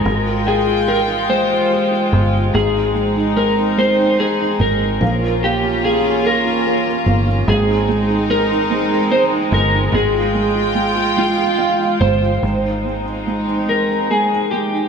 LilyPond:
<<
  \new Staff \with { instrumentName = "Electric slide guitar" } { \time 6/8 \key aes \major \tempo 4. = 48 bes'8 aes'8 bes'8 c''4 r8 | aes'4 bes'8 c''8 aes'8 bes'8~ | bes'8 g'8 aes'8 bes'4 r8 | aes'4 bes'4 c''8 bes'8 |
aes'4. f'4 c''8~ | c''4. bes'8 aes'8 g'8 | }
  \new Staff \with { instrumentName = "Felt piano" } { \time 6/8 \key aes \major << { r2. | r2. | r2. | r2. |
r2 f''8 c''8 | r2. | } \\ { aes16 f'16 g''16 f'16 g'16 f'16 aes16 f'16 g'16 f'16 g'16 f'16 | aes16 ees'16 aes16 ees'16 aes16 ees'16 aes16 ees'16 aes16 ees'16 aes16 ees'16 | bes16 f'16 bes16 f'16 bes16 f'16 bes16 f'16 bes16 f'16 bes16 f'16 | aes16 ees'16 aes16 ees'16 aes16 ees'16 aes16 ees'16 aes16 ees'16 aes16 ees'16 |
aes16 f'16 aes16 f'16 aes16 f'16 aes16 f'16 aes16 f'16 aes16 f'16 | aes16 ees'16 aes16 ees'16 aes16 ees'16 aes16 ees'16 aes16 ees'16 aes16 ees'16 | } >> }
  \new Staff \with { instrumentName = "String section" } { \time 6/8 \key aes \major << { <f' g''>2. | <c' ees'>2. | <des' f'>2. | <c' ees'>2. |
<f' g''>2. | <c' ees'>2. | } \\ { aes2.~ | aes2. | bes2. | aes2.~ |
aes2. | aes2. | } >> }
  \new Staff \with { instrumentName = "Fingered electric bass" } { \clef bass \time 6/8 \key aes \major aes,,2~ aes,,8 g,,8 | aes,,2~ aes,,8 aes,,8 | bes,,2~ bes,,8 g,,8 | aes,,2~ aes,,8 g,,8 |
aes,,2~ aes,,8 g,,8 | aes,,2. | }
>>